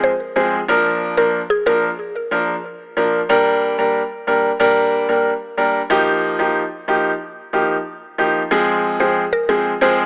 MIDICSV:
0, 0, Header, 1, 3, 480
1, 0, Start_track
1, 0, Tempo, 652174
1, 505, Time_signature, 4, 2, 24, 8
1, 7402, End_track
2, 0, Start_track
2, 0, Title_t, "Synth pluck"
2, 0, Program_c, 0, 84
2, 27, Note_on_c, 0, 72, 84
2, 115, Note_off_c, 0, 72, 0
2, 267, Note_on_c, 0, 72, 80
2, 356, Note_off_c, 0, 72, 0
2, 864, Note_on_c, 0, 70, 80
2, 954, Note_off_c, 0, 70, 0
2, 1105, Note_on_c, 0, 68, 81
2, 1194, Note_off_c, 0, 68, 0
2, 1226, Note_on_c, 0, 70, 80
2, 1315, Note_off_c, 0, 70, 0
2, 6626, Note_on_c, 0, 72, 74
2, 6715, Note_off_c, 0, 72, 0
2, 6864, Note_on_c, 0, 70, 81
2, 6954, Note_off_c, 0, 70, 0
2, 6984, Note_on_c, 0, 68, 88
2, 7074, Note_off_c, 0, 68, 0
2, 7227, Note_on_c, 0, 72, 83
2, 7315, Note_off_c, 0, 72, 0
2, 7402, End_track
3, 0, Start_track
3, 0, Title_t, "Grand piano"
3, 0, Program_c, 1, 0
3, 263, Note_on_c, 1, 53, 76
3, 264, Note_on_c, 1, 56, 71
3, 265, Note_on_c, 1, 60, 70
3, 267, Note_on_c, 1, 68, 86
3, 426, Note_off_c, 1, 53, 0
3, 426, Note_off_c, 1, 56, 0
3, 427, Note_off_c, 1, 60, 0
3, 428, Note_off_c, 1, 68, 0
3, 503, Note_on_c, 1, 53, 93
3, 504, Note_on_c, 1, 58, 88
3, 506, Note_on_c, 1, 62, 83
3, 508, Note_on_c, 1, 70, 104
3, 835, Note_off_c, 1, 53, 0
3, 836, Note_off_c, 1, 58, 0
3, 837, Note_off_c, 1, 62, 0
3, 838, Note_off_c, 1, 70, 0
3, 863, Note_on_c, 1, 53, 76
3, 865, Note_on_c, 1, 58, 72
3, 866, Note_on_c, 1, 62, 73
3, 868, Note_on_c, 1, 70, 83
3, 1026, Note_off_c, 1, 53, 0
3, 1027, Note_off_c, 1, 58, 0
3, 1028, Note_off_c, 1, 62, 0
3, 1028, Note_off_c, 1, 70, 0
3, 1222, Note_on_c, 1, 53, 79
3, 1223, Note_on_c, 1, 58, 72
3, 1225, Note_on_c, 1, 62, 69
3, 1226, Note_on_c, 1, 70, 88
3, 1386, Note_off_c, 1, 53, 0
3, 1386, Note_off_c, 1, 58, 0
3, 1387, Note_off_c, 1, 62, 0
3, 1388, Note_off_c, 1, 70, 0
3, 1702, Note_on_c, 1, 53, 74
3, 1703, Note_on_c, 1, 58, 69
3, 1705, Note_on_c, 1, 62, 65
3, 1707, Note_on_c, 1, 70, 85
3, 1865, Note_off_c, 1, 53, 0
3, 1866, Note_off_c, 1, 58, 0
3, 1867, Note_off_c, 1, 62, 0
3, 1868, Note_off_c, 1, 70, 0
3, 2184, Note_on_c, 1, 53, 78
3, 2185, Note_on_c, 1, 58, 71
3, 2186, Note_on_c, 1, 62, 72
3, 2188, Note_on_c, 1, 70, 82
3, 2346, Note_off_c, 1, 53, 0
3, 2347, Note_off_c, 1, 58, 0
3, 2347, Note_off_c, 1, 62, 0
3, 2348, Note_off_c, 1, 70, 0
3, 2423, Note_on_c, 1, 55, 92
3, 2424, Note_on_c, 1, 58, 87
3, 2426, Note_on_c, 1, 62, 88
3, 2427, Note_on_c, 1, 70, 109
3, 2755, Note_off_c, 1, 55, 0
3, 2756, Note_off_c, 1, 58, 0
3, 2757, Note_off_c, 1, 62, 0
3, 2757, Note_off_c, 1, 70, 0
3, 2783, Note_on_c, 1, 55, 75
3, 2785, Note_on_c, 1, 58, 70
3, 2786, Note_on_c, 1, 62, 67
3, 2788, Note_on_c, 1, 70, 82
3, 2946, Note_off_c, 1, 55, 0
3, 2947, Note_off_c, 1, 58, 0
3, 2947, Note_off_c, 1, 62, 0
3, 2948, Note_off_c, 1, 70, 0
3, 3143, Note_on_c, 1, 55, 73
3, 3145, Note_on_c, 1, 58, 70
3, 3146, Note_on_c, 1, 62, 71
3, 3148, Note_on_c, 1, 70, 84
3, 3306, Note_off_c, 1, 55, 0
3, 3307, Note_off_c, 1, 58, 0
3, 3307, Note_off_c, 1, 62, 0
3, 3308, Note_off_c, 1, 70, 0
3, 3382, Note_on_c, 1, 55, 93
3, 3384, Note_on_c, 1, 58, 83
3, 3385, Note_on_c, 1, 62, 85
3, 3386, Note_on_c, 1, 70, 107
3, 3715, Note_off_c, 1, 55, 0
3, 3716, Note_off_c, 1, 58, 0
3, 3716, Note_off_c, 1, 62, 0
3, 3717, Note_off_c, 1, 70, 0
3, 3742, Note_on_c, 1, 55, 73
3, 3743, Note_on_c, 1, 58, 70
3, 3745, Note_on_c, 1, 62, 66
3, 3746, Note_on_c, 1, 70, 79
3, 3905, Note_off_c, 1, 55, 0
3, 3906, Note_off_c, 1, 58, 0
3, 3907, Note_off_c, 1, 62, 0
3, 3907, Note_off_c, 1, 70, 0
3, 4103, Note_on_c, 1, 55, 75
3, 4104, Note_on_c, 1, 58, 71
3, 4105, Note_on_c, 1, 62, 71
3, 4106, Note_on_c, 1, 70, 88
3, 4266, Note_off_c, 1, 55, 0
3, 4266, Note_off_c, 1, 58, 0
3, 4267, Note_off_c, 1, 62, 0
3, 4267, Note_off_c, 1, 70, 0
3, 4342, Note_on_c, 1, 53, 94
3, 4343, Note_on_c, 1, 58, 85
3, 4345, Note_on_c, 1, 63, 85
3, 4346, Note_on_c, 1, 67, 108
3, 4675, Note_off_c, 1, 53, 0
3, 4675, Note_off_c, 1, 58, 0
3, 4676, Note_off_c, 1, 63, 0
3, 4677, Note_off_c, 1, 67, 0
3, 4703, Note_on_c, 1, 53, 79
3, 4705, Note_on_c, 1, 58, 70
3, 4706, Note_on_c, 1, 63, 71
3, 4707, Note_on_c, 1, 67, 81
3, 4866, Note_off_c, 1, 53, 0
3, 4867, Note_off_c, 1, 58, 0
3, 4867, Note_off_c, 1, 63, 0
3, 4868, Note_off_c, 1, 67, 0
3, 5063, Note_on_c, 1, 53, 74
3, 5065, Note_on_c, 1, 58, 69
3, 5065, Note_on_c, 1, 63, 71
3, 5067, Note_on_c, 1, 67, 84
3, 5226, Note_off_c, 1, 53, 0
3, 5227, Note_off_c, 1, 58, 0
3, 5227, Note_off_c, 1, 63, 0
3, 5228, Note_off_c, 1, 67, 0
3, 5542, Note_on_c, 1, 53, 75
3, 5544, Note_on_c, 1, 58, 68
3, 5545, Note_on_c, 1, 63, 70
3, 5547, Note_on_c, 1, 67, 83
3, 5706, Note_off_c, 1, 53, 0
3, 5706, Note_off_c, 1, 58, 0
3, 5707, Note_off_c, 1, 63, 0
3, 5708, Note_off_c, 1, 67, 0
3, 6023, Note_on_c, 1, 53, 78
3, 6025, Note_on_c, 1, 58, 69
3, 6026, Note_on_c, 1, 63, 69
3, 6027, Note_on_c, 1, 67, 85
3, 6186, Note_off_c, 1, 53, 0
3, 6187, Note_off_c, 1, 58, 0
3, 6187, Note_off_c, 1, 63, 0
3, 6188, Note_off_c, 1, 67, 0
3, 6263, Note_on_c, 1, 53, 94
3, 6264, Note_on_c, 1, 56, 84
3, 6266, Note_on_c, 1, 60, 84
3, 6267, Note_on_c, 1, 68, 100
3, 6595, Note_off_c, 1, 53, 0
3, 6596, Note_off_c, 1, 56, 0
3, 6597, Note_off_c, 1, 60, 0
3, 6597, Note_off_c, 1, 68, 0
3, 6622, Note_on_c, 1, 53, 79
3, 6624, Note_on_c, 1, 56, 68
3, 6625, Note_on_c, 1, 60, 70
3, 6627, Note_on_c, 1, 68, 84
3, 6785, Note_off_c, 1, 53, 0
3, 6786, Note_off_c, 1, 56, 0
3, 6787, Note_off_c, 1, 60, 0
3, 6788, Note_off_c, 1, 68, 0
3, 6984, Note_on_c, 1, 53, 77
3, 6985, Note_on_c, 1, 56, 69
3, 6987, Note_on_c, 1, 60, 72
3, 6988, Note_on_c, 1, 68, 85
3, 7146, Note_off_c, 1, 53, 0
3, 7147, Note_off_c, 1, 56, 0
3, 7148, Note_off_c, 1, 60, 0
3, 7148, Note_off_c, 1, 68, 0
3, 7222, Note_on_c, 1, 53, 94
3, 7224, Note_on_c, 1, 56, 85
3, 7225, Note_on_c, 1, 60, 86
3, 7226, Note_on_c, 1, 68, 102
3, 7402, Note_off_c, 1, 53, 0
3, 7402, Note_off_c, 1, 56, 0
3, 7402, Note_off_c, 1, 60, 0
3, 7402, Note_off_c, 1, 68, 0
3, 7402, End_track
0, 0, End_of_file